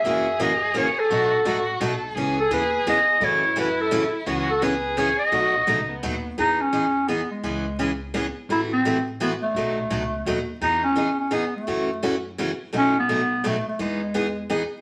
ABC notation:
X:1
M:3/4
L:1/16
Q:"Swing" 1/4=170
K:E
V:1 name="Violin"
G12 | F4 F4 A4 | G12 | E12 |
F4 G8 | F4 D2 B,4 z2 | z12 | z12 |
z12 | z12 | z12 | z12 |
z12 | z12 |]
V:2 name="Clarinet"
e4 d4 c2 A2- | A6 z6 | z2 A2 B4 d4 | c4 B2 A4 z2 |
z2 A2 B4 c2 d2- | d8 z4 | D2 C6 B,2 G,2- | G,6 z6 |
E2 =C4 z2 B,2 A,2- | A,8- A,2 z2 | D2 C4 C2 B,2 A,2- | A,6 z6 |
C2 B,6 A,2 A,2 | G,8 z4 |]
V:3 name="Steel-string acoustic guitar"
[C,E,^A,CF]2 z2 [C,E,A,CF] z3 [C,E,A,CF] z3 | [B,,F,A,DF]2 z2 [B,,F,A,DF] z3 [B,,F,A,DF] z3 | [C,E,B,CG]2 z2 [C,E,B,CG] z3 [C,E,B,CG] z3 | [C,E,A,CF]2 z2 [C,E,A,CF] z3 [C,E,A,CF] z3 |
[C,E,B,CG]2 z2 [C,E,B,CG] z3 [C,E,B,CG] z3 | [B,,F,A,DF]2 z2 [B,,F,A,DF] z3 [B,,F,A,DF] z3 | [E,B,DG]2 z2 [E,B,DG] z3 [E,B,DG] z3 | [C,E,B,CG]2 z2 [C,E,B,CG] z3 [C,E,B,CG] z3 |
[=C,E,A,EF]2 z2 [C,E,A,EF] z3 [C,E,A,EF] z3 | [B,,F,A,DF]2 z2 [B,,F,A,DF] z3 [B,,F,A,DF] z3 | [E,B,DG]2 z2 [E,B,DG] z3 [E,B,DG] z3 | [C,E,A,CF]2 z2 [C,E,A,CF] z3 [C,E,A,CF] z3 |
[B,,F,A,DF]2 z2 [B,,F,A,DF] z3 [B,,F,A,DF] z3 | [E,B,DG]2 z2 [E,B,DG] z3 [E,B,DG] z3 |]
V:4 name="Upright bass" clef=bass
F,,12 | B,,,4 A,,,4 B,,,4 | C,,4 D,,4 E,,4 | F,,12 |
C,,12 | B,,,4 C,,4 D,,4 | E,,12 | C,,12 |
A,,,12 | B,,,4 C,,4 D,,4 | E,,12 | F,,12 |
B,,,12 | E,,12 |]